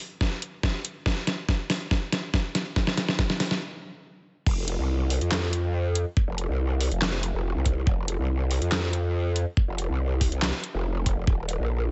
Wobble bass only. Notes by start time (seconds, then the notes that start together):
4.47 F1
4.79 C2
5.21 F2
6.28 F1
6.49 C2
6.92 F1
7.34 F1
7.55 C2
7.87 F1
8.19 C2
8.62 F2
9.68 F1
9.89 C2
10.32 C2
10.74 F1
11.17 F1
11.27 D#1
11.60 A#1